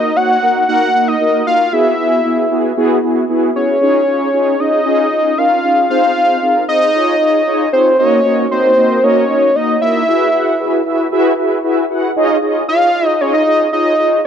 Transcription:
Already playing: analog polysynth A#3 D#4 F#4 A#4, analog synth lead D#5
0.16 analog polysynth A#3 D#4 F#4 C#5, analog synth lead F#5
0.42 analog polysynth A#3 D#4 F#4 A#4
0.68 analog polysynth A#3 D#4 F#4 A#4, analog synth lead F#5
0.94 analog polysynth A#3 D#4 F#4 A#4
1.08 analog synth lead D#5
1.21 analog polysynth A#3 D#4 F#4 A#4
1.47 analog polysynth A#3 D#4 F#4 A#4, analog synth lead F5
1.73 analog polysynth B3 E4 F#4 G#4, analog synth lead E5
1.99 analog polysynth B3 E4 F#4 G#4
2.25 analog polysynth B3 E4 F#4 G#4
2.51 analog polysynth B3 E4 F#4 G#4
2.77 analog polysynth B3 E4 F#4 G#4
3.03 analog polysynth B3 E4 F#4 G#4
3.29 analog polysynth B3 E4 F#4 G#4
3.55 analog polysynth B3 E4 F#4 G#4, analog synth lead C#5
3.81 analog polysynth C#4 D#4 F4 G#4
4.07 analog polysynth C#4 D#4 F4 G#4
4.34 analog polysynth C#4 D#4 F4 G#4
4.60 analog polysynth C#4 D#4 F4 G#4, analog synth lead D#5
4.86 analog polysynth C#4 D#4 F4 G#4
5.12 analog polysynth C#4 D#4 F4 G#4
5.38 analog polysynth C#4 D#4 F4 A#4, analog synth lead F5
5.64 analog polysynth C#4 D#4 F4 G#4
5.90 analog polysynth C4 D#4 G#4 C5, analog synth lead F5
6.16 analog polysynth C4 D#4 G#4 C5
6.42 analog polysynth C4 D#4 G#4 A#4
6.68 analog polysynth C4 D#4 G#4 C5, analog synth lead D#5
6.95 analog polysynth D#4 F4 G#4 C#5
7.21 analog polysynth D#4 F4 G#4 C#5
7.47 analog polysynth D#4 F4 G#4 C#5
7.73 analog polysynth D#4 F4 G#4 C#5, analog synth lead C5
7.99 analog polysynth A#3 D#4 F#4 A#4 D#5, analog synth lead C#5
8.25 analog polysynth A#3 D#4 F#4 A#4 D#5
8.51 analog polysynth A#3 D#4 F#4 A#4 D#5, analog synth lead C5
8.77 analog polysynth A#3 D#4 F#4 A#4 D#5
9.03 analog polysynth A#3 D#4 F#4 A#4 D#5, analog synth lead C#5
9.29 analog polysynth A#3 D#4 F#4 A#4 D#5
9.56 analog polysynth A#3 D#4 F#4 A#4 D#5, analog synth lead D#5
9.82 analog polysynth A#3 D#4 F#4 A#4 D#5, analog synth lead E5
10.08 analog polysynth E4 F#4 G#4 B4 E5
10.34 analog polysynth E4 F#4 G#4 B4 F#5
10.60 analog polysynth E4 F#4 G#4 B4 E5
10.86 analog polysynth E4 F#4 G#4 B4 E5
11.12 analog polysynth E4 F#4 G#4 B4 E5
11.38 analog polysynth E4 F#4 G#4 B4 E5
11.64 analog polysynth E4 F#4 G#4 B4 E5
11.90 analog polysynth E4 F#4 G#4 B4 F#5
12.16 analog polysynth D#4 F4 G#4 C#5 D#5
12.42 analog polysynth D#4 F4 G#4 C#5 D#5
12.68 analog polysynth D#4 F4 G#4 C#5 D#5, analog synth lead F5
12.94 analog polysynth D#4 F4 G#4 C#5 D#5
13.07 analog synth lead D#5
13.21 analog polysynth D#4 F4 G#4 C#5 D#5, analog synth lead C#5
13.34 analog synth lead D#5
13.47 analog polysynth F4 G#4 C#5
13.73 analog polysynth D#4 F4 G#4 C#5 D#5, analog synth lead D#5
13.99 analog polysynth D#4 F4 G#4 C#5 D#5

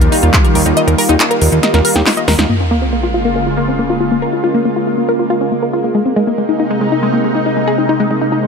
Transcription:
Already playing: analog synth pad D#3 G3 A#3 F4
0.01 analog synth bass D#2, synth arpeggio sound A#4, closed hi-hat
0.12 synth arpeggio sound D#4, open hi-hat
0.23 analog synth bass D#2, synth arpeggio sound F4, closed hi-hat
0.33 synth arpeggio sound D#4, kick, clap, closed hi-hat
0.44 synth arpeggio sound A#4, closed hi-hat
0.55 analog synth bass D#2, synth arpeggio sound A#4, open hi-hat
0.66 analog synth bass D#2, synth arpeggio sound D#4, closed hi-hat
0.77 synth arpeggio sound D#5, closed hi-hat
0.88 analog synth bass D#2, synth arpeggio sound A#4, closed hi-hat
0.98 synth arpeggio sound A#4, open hi-hat
1.09 analog synth bass D#2, synth arpeggio sound D#4, closed hi-hat
1.20 synth arpeggio sound D#4, clap, closed hi-hat
1.31 synth arpeggio sound A#4, closed hi-hat
1.42 analog synth bass D#2, synth arpeggio sound A#4, open hi-hat
1.52 analog synth bass D#2, synth arpeggio sound D#4, closed hi-hat
1.63 synth arpeggio sound D#5, snare, closed hi-hat
1.74 analog synth bass D#2, synth arpeggio sound A#4, snare, closed hi-hat
1.85 synth arpeggio sound A#4, open hi-hat
1.95 analog synth bass D#2, synth arpeggio sound G4, snare, closed hi-hat
2.06 synth arpeggio sound D#4, snare, clap, open hi-hat
2.17 synth arpeggio sound D#5, closed hi-hat
2.28 analog synth bass D#2, synth arpeggio sound A#4, snare, open hi-hat
2.39 analog synth bass D#2, synth arpeggio sound D#4, snare, closed hi-hat
2.50 analog synth pad C#3 G#3 A#3 F4, synth arpeggio sound A#3, sub drop
2.60 synth arpeggio sound C#4
2.71 synth arpeggio sound A#3
2.82 synth arpeggio sound C4
2.93 synth arpeggio sound A#3
3.03 synth arpeggio sound F4
3.14 synth arpeggio sound F4
3.25 synth arpeggio sound A#3
3.36 synth arpeggio sound A#3
3.47 synth arpeggio sound F4
3.57 synth arpeggio sound A#3
3.68 synth arpeggio sound C4
3.79 synth arpeggio sound A#3
3.90 synth arpeggio sound F4
4.01 synth arpeggio sound F4
4.11 synth arpeggio sound A#3
4.22 synth arpeggio sound A#4
4.33 synth arpeggio sound F4
4.44 synth arpeggio sound F4
4.55 synth arpeggio sound A#3
4.65 synth arpeggio sound A#3
4.76 synth arpeggio sound F4
4.87 synth arpeggio sound F4
4.98 synth arpeggio sound A#3
5.09 synth arpeggio sound A#4
5.19 synth arpeggio sound F4
5.30 synth arpeggio sound F4
5.41 synth arpeggio sound C#4
5.52 synth arpeggio sound A#3
5.63 synth arpeggio sound A#4
5.73 synth arpeggio sound F4
5.84 synth arpeggio sound A#3
5.95 analog synth pad C3 D#4, synth arpeggio sound G#3
6.06 synth arpeggio sound C4
6.16 synth arpeggio sound G#3
6.27 synth arpeggio sound A#3
6.38 synth arpeggio sound G#3
6.49 synth arpeggio sound D#4
6.60 synth arpeggio sound D#4
6.71 synth arpeggio sound G#3
6.81 synth arpeggio sound G#3
6.92 synth arpeggio sound D#4
7.03 synth arpeggio sound G#3
7.14 synth arpeggio sound A#3
7.24 synth arpeggio sound G#3
7.35 synth arpeggio sound D#4
7.46 synth arpeggio sound D#4
7.57 synth arpeggio sound G#3
7.68 synth arpeggio sound G#4
7.78 synth arpeggio sound D#4
7.89 synth arpeggio sound D#4
8.00 synth arpeggio sound G#3
8.11 synth arpeggio sound G#3
8.21 synth arpeggio sound D#4
8.32 synth arpeggio sound D#4
8.43 synth arpeggio sound G#3

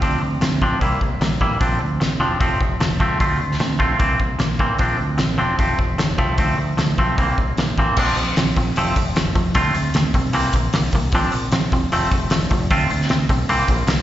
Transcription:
0.02 fingered electric bass D2, clean electric guitar F3 C4 D4, kick, open hi-hat
0.20 fingered electric bass D2, clean electric guitar F3 C4
0.41 fingered electric bass D2, clean electric guitar F3 C4, snare, open hi-hat
0.61 fingered electric bass A1, clean electric guitar F3 C4 D4, kick
0.81 fingered electric bass C2, clean electric guitar G3 A#3 E4, kick, open hi-hat
1.01 fingered electric bass C2, clean electric guitar G3 A#3, kick
1.19 fingered electric bass A#1, clean electric guitar G3 A#3, snare, open hi-hat
1.41 fingered electric bass A1, clean electric guitar G3 A#3 E4, kick
1.60 fingered electric bass A#1, clean electric guitar F3 C4 D4, kick, open hi-hat
1.81 fingered electric bass D2, clean electric guitar F3 C4
2.00 fingered electric bass A#1, clean electric guitar F3 C4, snare, open hi-hat
2.19 fingered electric bass E1, clean electric guitar F3 C4 D4
2.40 fingered electric bass F1, clean electric guitar F3 A3 C4, kick, open hi-hat
2.61 fingered electric bass F1, clean electric guitar F3 A3, kick
2.79 fingered electric bass F1, clean electric guitar F3 A3, snare, open hi-hat
3.00 fingered electric bass C#2, clean electric guitar F3 A3 C4, kick
3.20 fingered electric bass D2, clean electric guitar A3 C4 F4, kick, open hi-hat
3.40 fingered electric bass D2, clean electric guitar A3 C4
3.52 snare
3.59 fingered electric bass D2, clean electric guitar A3 C4, snare, open hi-hat
3.79 fingered electric bass A#1, clean electric guitar A3 C4 F4, kick
3.99 fingered electric bass C2, clean electric guitar E3 A#3 C4, kick, open hi-hat
4.19 fingered electric bass C2, clean electric guitar E3 A#3, kick
4.39 fingered electric bass A#1, clean electric guitar E3 A#3, snare, open hi-hat
4.59 fingered electric bass A1, clean electric guitar E3 A#3 C4, kick
4.78 fingered electric bass A#1, clean electric guitar F3 C4 D4, kick, open hi-hat
4.99 fingered electric bass D2, clean electric guitar F3 C4
5.18 fingered electric bass A#1, clean electric guitar F3 C4, snare, open hi-hat
5.38 fingered electric bass E1, clean electric guitar F3 C4 D4
5.59 fingered electric bass F1, clean electric guitar F3 A3 C4, kick, open hi-hat
5.78 fingered electric bass F1, clean electric guitar F3 A3, kick
5.98 fingered electric bass F1, clean electric guitar F3 A3, snare, open hi-hat
6.18 fingered electric bass C2, clean electric guitar F3 A3 C4, kick
6.38 fingered electric bass D2, clean electric guitar F3 A3 C4, kick, open hi-hat
6.58 fingered electric bass D2, clean electric guitar F3 A3
6.77 fingered electric bass D2, clean electric guitar F3 A3, snare, open hi-hat
6.98 fingered electric bass B1, clean electric guitar F3 A3 C4, kick
7.17 fingered electric bass C2, clean electric guitar E3 A#3 C4, kick, open hi-hat
7.38 fingered electric bass C2, clean electric guitar E3 A#3, kick
7.57 fingered electric bass A#1, clean electric guitar E3 A#3, snare, open hi-hat
7.77 fingered electric bass A1, clean electric guitar E3 A#3 C4, kick
7.96 fingered electric bass A#1, clean electric guitar F3 C4 D4, kick, crash
8.16 fingered electric bass A#1, clean electric guitar F3 C4, open hi-hat
8.35 fingered electric bass A#1, clean electric guitar F3 C4, snare, open hi-hat
8.56 fingered electric bass A#1, clean electric guitar F3 C4, kick, open hi-hat
8.76 fingered electric bass F1, clean electric guitar F3 A3 C4, open hi-hat
8.96 fingered electric bass F1, clean electric guitar F3 A3, kick, open hi-hat
9.15 fingered electric bass F1, clean electric guitar F3 A3, snare, open hi-hat
9.35 fingered electric bass F1, clean electric guitar F3 A3, kick, open hi-hat
9.54 fingered electric bass D2, clean electric guitar A3 C4 F4, kick, open hi-hat
9.74 fingered electric bass D2, clean electric guitar A3 C4, open hi-hat
9.93 fingered electric bass D2, clean electric guitar A3 C4, snare, open hi-hat
10.14 fingered electric bass B1, clean electric guitar A3 C4, kick, open hi-hat
10.33 fingered electric bass C2, clean electric guitar E3 A#3 C4, open hi-hat
10.53 fingered electric bass A#1, clean electric guitar E3 A#3, kick, open hi-hat
10.73 fingered electric bass C2, clean electric guitar E3 A#3, snare, open hi-hat
10.92 fingered electric bass C2, clean electric guitar E3 A#3, kick, open hi-hat
11.12 fingered electric bass A#1, clean electric guitar F3 C4 D4, kick, open hi-hat
11.32 fingered electric bass A#1, clean electric guitar F3 C4, open hi-hat
11.52 fingered electric bass A#1, clean electric guitar F3 C4, snare, open hi-hat
11.72 fingered electric bass E1, clean electric guitar F3 C4, kick, open hi-hat
11.92 fingered electric bass F1, clean electric guitar F3 A3 C4, open hi-hat
12.11 fingered electric bass F1, clean electric guitar F3 A3, kick, open hi-hat
12.30 fingered electric bass F1, clean electric guitar F3 A3, snare, open hi-hat
12.50 fingered electric bass F1, clean electric guitar F3 A3, kick, open hi-hat
12.70 fingered electric bass D2, clean electric guitar A3 C4 F4, kick, open hi-hat
12.90 fingered electric bass D2, clean electric guitar A3 C4, open hi-hat
13.01 snare
13.09 fingered electric bass D2, clean electric guitar A3 C4, snare, open hi-hat
13.29 fingered electric bass B1, clean electric guitar A3 C4, kick, open hi-hat
13.49 fingered electric bass C2, clean electric guitar E3 A#3 C4, open hi-hat
13.68 fingered electric bass A#1, clean electric guitar E3 A#3, kick, open hi-hat
13.87 fingered electric bass C2, clean electric guitar E3 A#3, snare, open hi-hat

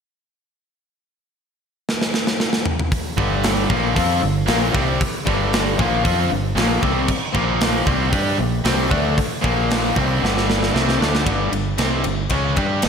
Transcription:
1.89 snare
2.01 snare
2.14 snare
2.27 snare
2.40 snare
2.53 snare
2.66 mid tom
2.79 mid tom
2.92 kick, open hi-hat
3.17 fingered electric bass G1, overdriven electric guitar G2 D3 G3, kick
3.44 snare, open hi-hat
3.69 fingered electric bass A#1, overdriven electric guitar A#2 F3 A#3, kick
3.95 fingered electric bass F2, overdriven electric guitar F3 C4 F4, kick, open hi-hat
4.21 fingered electric bass G1, overdriven electric guitar G2 D3
4.46 fingered electric bass A#1, overdriven electric guitar A#2 F3 A#3, snare, open hi-hat
4.72 fingered electric bass C2, overdriven electric guitar C3 G3 C4, kick
5.01 kick, open hi-hat
5.25 fingered electric bass G1, overdriven electric guitar G2 D3 G3, kick
5.53 snare, open hi-hat
5.77 fingered electric bass A#1, overdriven electric guitar A#2 F3 A#3, kick
6.03 fingered electric bass F2, overdriven electric guitar F3 C4 F4, kick, open hi-hat
6.29 fingered electric bass G1, overdriven electric guitar G2 D3
6.55 fingered electric bass A#1, overdriven electric guitar A#2 F3 A#3, snare, open hi-hat
6.81 fingered electric bass C2, overdriven electric guitar C3 G3 C4, kick
7.08 kick, crash
7.33 fingered electric bass A#1, overdriven electric guitar A#2 F3 A#3, kick
7.61 snare, open hi-hat
7.86 fingered electric bass C2, overdriven electric guitar C3 G3 C4, kick
8.12 fingered electric bass G2, overdriven electric guitar G3 D4 G4, kick, open hi-hat
8.38 fingered electric bass A#1, overdriven electric guitar A#2 F3
8.64 fingered electric bass C2, overdriven electric guitar C3 G3 C4, snare, open hi-hat
8.90 fingered electric bass D2, overdriven electric guitar D3 A3 D4, kick
9.18 kick, open hi-hat
9.42 fingered electric bass A#1, overdriven electric guitar A#2 F3 A#3, kick
9.71 snare, open hi-hat
9.95 fingered electric bass C2, overdriven electric guitar C3 G3 C4, kick
10.21 fingered electric bass G1, overdriven electric guitar G2 D3 G3
10.25 snare
10.37 snare
10.50 snare
10.63 snare
10.72 fingered electric bass C2, overdriven electric guitar C3 G3 C4, snare
10.89 snare
10.99 fingered electric bass D2, overdriven electric guitar D3 A3 D4, snare
11.15 snare
11.24 fingered electric bass G1, overdriven electric guitar G2 D3 G3, kick, ride
11.51 fingered electric bass G1, overdriven electric guitar G2 D3, ride
11.78 fingered electric bass C2, overdriven electric guitar C3 G3 C4, snare, ride
12.04 fingered electric bass G1, overdriven electric guitar G2 D3, ride
12.30 fingered electric bass C#2, overdriven electric guitar C#3 G#3 C#4, kick, ride
12.56 fingered electric bass G2, overdriven electric guitar G3 D4 G4, kick, ride
12.82 fingered electric bass G1, overdriven electric guitar G2 D3, snare, ride

